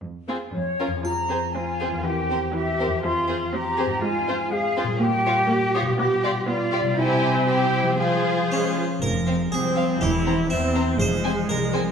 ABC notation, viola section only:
X:1
M:2/4
L:1/8
Q:1/4=121
K:Fm
V:1 name="Viola section"
z C z D | F,2 C2 | =E,2 E,2 | F,2 C2 |
A,2 A,2 | B,2 B,2 | =B,2 B,2 | C4 |
F,2 A, F, | z2 C2 | =E2 C2 | A,4 |]